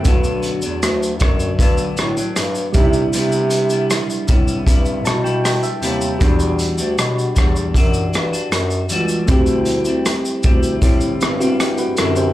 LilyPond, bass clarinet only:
\new Staff \with { instrumentName = "Bass clarinet" } { \clef bass \time 4/4 \key g \major \tempo 4 = 78 g,8. e,16 d,8 fis,8 g,8 a,8 g,8 c8 | c4~ c16 r16 a,8 g,8 b,4 ees,8 | e,8. d,16 b,8 e,8 fis,8 g,8 fis,8 cis,8 | d,4~ d,16 r16 d,8 a,8 g,4 fis,8 | }